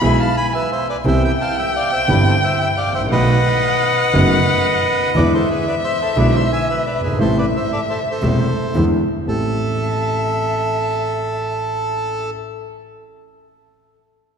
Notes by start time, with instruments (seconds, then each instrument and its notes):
Already playing: violin B5
0.01 grand piano B1 B2 E3 G#3 B3 G#4, double bass B1, bandoneon E5 G#5
0.20 bandoneon F5 A5
0.37 bandoneon G#5 B5
0.53 bandoneon B4 E5, violin G#5
0.72 bandoneon C5 E5
0.89 bandoneon B4 D5
1.04 double bass C2, grand piano C2 C3 E3 B3 C4 G4, bandoneon C5 E5, violin G5
1.24 bandoneon E5 G5
1.41 bandoneon F5 A5
1.58 bandoneon E5 G5
1.76 bandoneon D5 F5
1.93 bandoneon C5 E5
2.08 double bass G1, grand piano G1 G2 E3 B3 C4 G4, bandoneon B4 D5
2.27 bandoneon A4 C5
2.44 bandoneon C5 E5
2.61 bandoneon E5 G5
2.77 bandoneon D5 F5
2.86 double bass A1
2.92 grand piano G#1, bandoneon C5 E5
2.99 grand piano A1
3.06 grand piano A#1
3.11 double bass B1, grand piano B1 B2 D#3 A3 B3 F#4, bandoneon B4 D#5, violin F#5
4.14 grand piano F#1 F#2 D#3 A3 B3 F#4, double bass F#1
5.15 double bass E2, grand piano E2 D3 E3 G#3 B3 E4, bandoneon B4 D5, violin E5
5.34 bandoneon A4 C5
5.50 bandoneon G#4 B4
5.67 bandoneon B4 D5
5.84 bandoneon C5 E5
6.01 bandoneon A4 C5
6.16 double bass B1, grand piano B1 B2 D3 G#3 B3 E4, bandoneon B4 D5
6.35 bandoneon C5 E5
6.52 bandoneon E5 G#5
6.69 bandoneon B4 E5
6.86 bandoneon B4 D5
6.94 double bass G1
7.00 grand piano F#1, bandoneon B4
7.04 grand piano G1, bandoneon G#4
7.12 grand piano G#1
7.19 grand piano A1 A2 C3 G3 A3 E4, double bass A1, bandoneon A4 C5, violin E5
7.38 bandoneon B4 D5
7.56 bandoneon C5 E5
7.73 bandoneon A4 D5
7.90 bandoneon A4 C5
8.11 bandoneon A4 C5
8.22 grand piano E1 E2 C3 G3 A3 E4, double bass E1
8.75 double bass E2, grand piano E2 D3 E3 G#3 B3 E4
9.27 double bass A1, grand piano A1 A3 C4 G4, bandoneon A4, violin E5